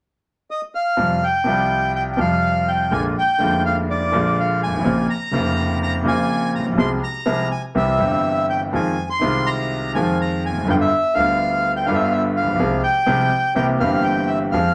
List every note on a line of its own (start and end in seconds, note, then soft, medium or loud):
0.51 0.61 D#5 medium
0.75 1.24 F5 medium
0.97 1.18 F2 medium
0.97 1.18 C3 soft
0.97 1.18 F3 medium
0.97 1.18 G3 soft
0.97 1.18 F4 medium
1.24 1.92 G5 medium
1.44 2.15 C2 medium
1.44 2.16 C2 medium
1.44 2.15 C3 medium
1.44 2.15 F3 soft
1.44 2.16 G3 medium
1.44 2.16 F4 medium
1.96 2.03 G5 medium
2.12 2.19 G5 soft
2.17 2.88 F2 medium
2.17 2.87 C3 medium
2.17 2.88 F3 medium
2.17 2.89 G3 soft
2.17 2.89 F4 medium
2.17 2.70 F5 medium
2.68 2.93 G5 medium
2.91 3.12 A#1 medium
2.91 3.12 A#2 medium
2.91 3.12 D3 medium
2.91 3.12 G#3 soft
2.91 3.12 A#3 soft
2.91 3.12 F4 medium
2.91 3.04 G#5 medium
3.19 3.63 G5 medium
3.38 4.09 F1 medium
3.38 4.10 F1 medium
3.38 4.10 F2 medium
3.38 4.09 D3 medium
3.38 4.09 G#3 soft
3.38 4.10 A#3 medium
3.38 4.11 F4 medium
3.65 3.76 F5 medium
3.90 4.40 D5 medium
4.12 4.82 A#1 medium
4.12 4.65 A#1 medium
4.12 4.82 A#2 medium
4.12 4.81 D3 medium
4.12 4.81 G#3 medium
4.12 4.82 A#3 medium
4.12 4.83 F4 medium
4.40 4.61 F5 medium
4.63 4.73 G1 soft
4.63 5.07 G#5 medium
4.73 4.79 G#1 soft
4.79 4.84 A1 medium
4.79 4.86 A1 medium
4.84 5.05 A#1 medium
4.84 5.05 A#2 medium
4.84 5.05 C#3 medium
4.84 5.05 A#3 medium
4.84 5.05 C4 soft
4.84 5.05 F4 medium
5.10 5.78 A#5 medium
5.31 6.01 F1 medium
5.31 6.02 F1 medium
5.31 6.02 F2 medium
5.31 6.01 C#3 medium
5.31 6.02 A#3 medium
5.31 6.03 C4 soft
5.31 6.03 F4 medium
5.83 5.94 A#5 medium
6.03 6.64 A#1 medium
6.03 6.59 A#1 medium
6.03 6.73 A#2 medium
6.03 6.73 C#3 medium
6.03 6.73 A#3 medium
6.03 6.74 C4 medium
6.07 6.75 F4 medium
6.07 6.52 G#5 medium
6.55 6.66 A#5 medium
6.60 6.64 A1 soft
6.60 6.66 A1 soft
6.65 6.70 A#1 soft
6.65 6.72 A#1 soft
6.71 6.77 B1 medium
6.71 6.78 B1 medium
6.78 6.98 C2 medium
6.78 6.98 C3 medium
6.78 6.98 F3 medium
6.78 6.98 G#3 soft
6.78 6.98 C4 medium
6.78 6.98 G#4 medium
6.78 6.89 C6 medium
7.03 7.48 A#5 medium
7.26 7.47 C2 medium
7.26 7.47 C3 medium
7.26 7.46 F3 medium
7.26 7.47 G#3 soft
7.26 7.46 C4 soft
7.26 7.47 G#4 medium
7.51 7.62 G#5 medium
7.75 7.96 C2 medium
7.75 7.96 C3 medium
7.75 7.96 E3 soft
7.75 7.96 G3 soft
7.75 7.96 C4 soft
7.75 7.96 G4 medium
7.75 8.46 E5 medium
7.97 8.70 G1 medium
7.97 8.70 G2 medium
7.97 8.69 E3 medium
7.97 8.70 G3 medium
7.97 8.70 C4 soft
8.01 8.71 G4 medium
8.50 8.61 G5 medium
8.73 8.94 F2 medium
8.73 8.94 D#3 soft
8.73 8.94 F3 medium
8.73 8.94 G#3 soft
8.73 8.94 C4 soft
8.73 8.94 F4 medium
8.73 9.09 G#5 medium
9.10 9.48 C6 medium
9.19 9.92 C2 medium
9.19 9.92 C3 medium
9.19 9.91 D#3 soft
9.19 9.92 G#3 soft
9.19 9.92 C4 soft
9.23 9.93 F4 medium
9.46 9.92 A#5 medium
9.94 10.50 F2 medium
9.94 10.57 F2 medium
9.94 10.64 D#3 medium
9.94 10.65 F3 medium
9.94 10.65 G#3 medium
9.94 10.65 C4 soft
9.94 10.66 F4 medium
9.94 10.18 G#5 medium
10.21 10.44 A#5 medium
10.46 10.68 G#5 medium
10.50 10.56 E1 soft
10.50 10.57 E2 soft
10.57 10.62 F1 soft
10.57 10.64 F2 soft
10.63 10.67 F#1 medium
10.63 10.70 F#2 medium
10.68 10.89 G1 medium
10.68 10.89 G2 medium
10.68 10.89 D3 medium
10.68 10.89 G3 soft
10.68 10.89 B3 soft
10.68 10.89 F4 medium
10.68 10.75 G5 medium
10.81 11.15 E5 medium
11.15 11.85 D2 medium
11.15 11.86 D2 medium
11.15 11.84 D3 medium
11.15 11.85 G3 soft
11.15 11.86 B3 soft
11.15 11.86 F4 medium
11.15 11.72 F5 medium
11.76 11.86 G5 medium
11.86 12.42 G1 medium
11.86 12.57 G1 medium
11.86 12.57 G2 medium
11.86 12.56 D3 medium
11.86 12.56 G3 medium
11.86 12.57 B3 medium
11.86 11.95 F5 medium
11.91 12.58 F4 medium
11.91 12.04 E5 medium
12.04 12.13 F5 medium
12.12 12.23 E5 medium
12.37 12.81 F5 medium
12.42 12.47 A1 soft
12.42 12.49 A1 soft
12.47 12.53 A#1 soft
12.47 12.54 A#1 soft
12.53 12.59 B1 medium
12.53 12.61 B1 medium
12.59 12.80 C2 medium
12.59 12.80 C3 medium
12.59 12.80 F3 medium
12.59 12.80 G#3 medium
12.59 12.80 C4 medium
12.59 12.80 G#4 medium
12.83 13.54 G5 medium
13.06 13.28 C2 medium
13.06 13.28 C3 medium
13.06 13.28 F3 medium
13.06 13.28 G#3 medium
13.06 13.28 C4 medium
13.06 13.28 G#4 medium
13.55 13.77 C2 medium
13.55 13.77 C3 medium
13.55 13.77 E3 medium
13.55 13.77 A#3 medium
13.55 13.77 C4 soft
13.55 13.77 G4 medium
13.55 13.67 G5 medium
13.79 14.50 G1 medium
13.79 14.50 G2 medium
13.79 14.49 E3 medium
13.79 14.50 A#3 medium
13.79 14.50 C4 medium
13.79 14.03 F5 medium
13.83 14.51 G4 medium
14.03 14.29 G5 medium
14.27 14.39 E5 medium
14.52 14.74 F2 medium
14.52 14.74 F3 medium
14.52 14.74 G#3 soft
14.52 14.74 C4 soft
14.52 14.74 G#4 medium
14.52 14.74 F5 medium